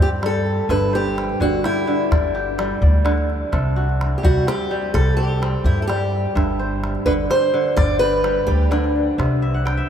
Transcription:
Already playing: kora C3 G3 C4
0.00 upright bass G2, kora G4, steel-string acoustic guitar G4
0.22 kora G3, steel-string acoustic guitar A4, calabash click
0.35 calabash click
0.47 calabash click
0.69 upright bass G1, kora G2 E5, steel-string acoustic guitar B4, calabash thump, calabash click
0.93 steel-string acoustic guitar G4, kora C5, calabash click
1.18 calabash click
1.29 calabash click
1.40 upright bass G1, kora D3, steel-string acoustic guitar F#4, calabash thump
1.64 steel-string acoustic guitar E4, kora G4, calabash click
1.87 kora D3, calabash click
2.11 upright bass G1, kora D5, calabash thump, calabash click
2.24 calabash click
2.35 kora G4, calabash click
2.58 kora G3, calabash click
2.82 upright bass D2, kora D5, calabash thump
3.05 kora D3, calabash click
3.18 calabash click
3.30 calabash click
3.52 upright bass C2, kora C3 A4, calabash thump, calabash click
3.76 kora F#4, calabash click
3.89 calabash click
4.01 calabash click
4.18 steel-string acoustic guitar G4
4.23 upright bass C2, kora G3, steel-string acoustic guitar F#4, calabash thump
4.47 kora C4, steel-string acoustic guitar G4, calabash click
4.60 calabash click
4.71 kora G3
4.94 upright bass C2, kora G4, steel-string acoustic guitar A4, calabash thump, calabash click
5.17 kora C4, steel-string acoustic guitar G4, calabash click
5.42 kora C4, calabash click
5.64 upright bass G2, steel-string acoustic guitar E4, kora G4, calabash thump, calabash click
5.82 steel-string acoustic guitar A4
5.87 kora G3, steel-string acoustic guitar G4, calabash click
6.01 calabash click
6.35 upright bass G1, kora G2 E5, calabash thump, calabash click
6.59 kora C5, calabash click
6.84 calabash click
6.95 calabash click
7.06 upright bass G1, kora D3, steel-string acoustic guitar B4, calabash thump
7.30 kora G4, steel-string acoustic guitar C5, calabash click
7.54 kora D3, calabash click
7.76 upright bass G1, steel-string acoustic guitar D5, kora D5, calabash thump, calabash click
7.90 calabash click
7.99 kora G4, steel-string acoustic guitar B4, calabash click
8.24 kora G3, calabash click
8.47 upright bass D2, steel-string acoustic guitar G4, kora D5, calabash thump
8.71 kora D3, steel-string acoustic guitar D4, calabash click
8.84 calabash click
8.96 calabash click
9.18 upright bass C2, kora C3, calabash thump, calabash click
9.42 kora E5, calabash click
9.54 kora F#5
9.65 kora G5, calabash click
9.77 kora E5, calabash click

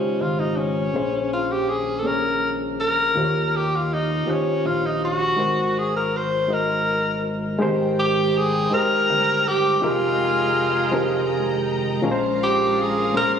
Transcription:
Already playing: reed electric piano C#3 G#3 D#4 F4 G4 C5 G5, tenor saxophone C#4
0.21 analog synth bass G#1, tenor saxophone F4
0.40 tenor saxophone D#4
0.56 tenor saxophone C#4
0.92 analog synth bass A#1, reed electric piano A#2 A#3 C#4 G#4 C5
1.33 tenor saxophone F4
1.51 tenor saxophone G4
1.69 tenor saxophone G#4
1.99 reed electric piano A#2, tenor saxophone A4
2.04 reed electric piano A#3 C#4 G#4 C#5, tenor saxophone A#4
2.80 tenor saxophone A#4
3.14 analog synth bass D#2, reed electric piano D#3 A#3 F4 G4 C5
3.24 reed electric piano C#5
3.56 tenor saxophone G4
3.75 tenor saxophone F4
3.93 tenor saxophone D#4
4.25 analog synth bass A#1, reed electric piano D#3 A#3 F4 G4 C5
4.30 tenor saxophone C#4
4.35 reed electric piano C#5
4.65 analog synth bass A#1, tenor saxophone F4
4.86 tenor saxophone D#4
5.05 tenor saxophone F#4
5.36 analog synth bass G#1, reed electric piano G#3 D#4 F#4 A#4 C5
5.79 tenor saxophone G#4
5.97 tenor saxophone A#4
6.17 tenor saxophone C5
6.48 reed electric piano G#3 D#4 F#4 A#4 D#5
6.53 tenor saxophone A#4
7.59 analog synth bass G#1, horn section D#3 C4 G4 G5, reed electric piano G#3 D#4 G4 A#4 C5, string section G#3 C5 G5 A#5
7.99 tenor saxophone G4
8.37 tenor saxophone G#4
8.70 analog synth bass G1, reed electric piano G#3 D#4 G4 A#4 C5, tenor saxophone A#4
9.10 analog synth bass G1
9.48 tenor saxophone G4
9.76 horn section D#3, tenor saxophone G4
9.80 analog synth bass F1, reed electric piano F3 C4 D#4 G4 G#4 A#4, horn section G#3 C4 G#4, tenor saxophone F4, string section D#5
10.91 reed electric piano F3 C4 D#4 G4 G#4 A#4
12.02 analog synth bass A#1, reed electric piano A#2 F3 G#3 C#4 A#4, horn section C#3 F3 A#3 F4, string section A#4 F5
12.12 reed electric piano C5
12.43 tenor saxophone G4
12.81 tenor saxophone G#4
13.13 analog synth bass F1, reed electric piano A#2 F3 C#4 G#4 C5, tenor saxophone A#4

